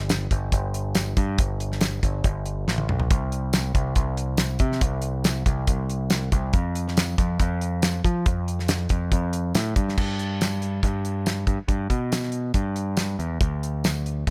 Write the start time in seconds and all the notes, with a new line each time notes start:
Already playing: G1
0.09 snare, closed hi-hat, tambourine
0.31 G1, kick, closed hi-hat
0.52 G1, kick, closed hi-hat
0.74 closed hi-hat
0.95 snare, closed hi-hat, tambourine
1.17 G2, kick, closed hi-hat
1.38 G1, kick, closed hi-hat
1.60 closed hi-hat
1.72 snare
1.81 snare, closed hi-hat, tambourine
2.03 G1, kick, closed hi-hat
2.24 G1, kick, closed hi-hat
2.46 closed hi-hat
2.68 A1, snare
2.78 high tom
2.89 B1, mid tom
3.00 floor tom
3.10 C2, kick, closed hi-hat
3.32 closed hi-hat
3.53 snare, closed hi-hat, tambourine
3.74 C2, kick, closed hi-hat
3.95 C2, kick, closed hi-hat
4.17 closed hi-hat
4.37 snare, closed hi-hat, tambourine
4.59 C3, kick, closed hi-hat
4.72 snare
4.81 C2, kick, closed hi-hat
5.02 closed hi-hat
5.24 snare, closed hi-hat, tambourine
5.46 C2, kick, closed hi-hat
5.67 C2, kick, closed hi-hat
5.90 closed hi-hat
6.10 snare, closed hi-hat, tambourine
6.32 C2, kick, closed hi-hat
6.53 F2, kick, closed hi-hat
6.75 closed hi-hat
6.88 snare
6.97 snare, closed hi-hat, tambourine
7.18 F2, kick, closed hi-hat
7.39 F2, kick, closed hi-hat
7.61 closed hi-hat
7.82 snare, closed hi-hat, tambourine
8.04 F3, kick, closed hi-hat
8.26 F2, kick, closed hi-hat
8.48 closed hi-hat
8.59 snare
8.68 snare, closed hi-hat, tambourine
8.89 F2, kick, closed hi-hat
9.12 F2, kick, closed hi-hat
9.33 closed hi-hat
9.55 A2, snare, closed hi-hat, tambourine
9.76 G2, kick, closed hi-hat
9.89 snare
9.98 G2, kick, crash
10.19 closed hi-hat
10.41 snare, closed hi-hat, tambourine
10.62 closed hi-hat
10.83 G2, kick, closed hi-hat
11.05 closed hi-hat
11.26 snare, closed hi-hat, tambourine
11.47 G2, kick, closed hi-hat
11.68 G2, kick, closed hi-hat
11.90 B2, kick, closed hi-hat
12.12 snare, closed hi-hat, tambourine
12.23 snare
12.32 closed hi-hat
12.54 G2, kick, closed hi-hat
12.76 closed hi-hat
12.97 snare, closed hi-hat, tambourine
13.19 E2, closed hi-hat
13.41 D2, kick, closed hi-hat
13.63 closed hi-hat
13.84 snare, closed hi-hat, tambourine
14.06 closed hi-hat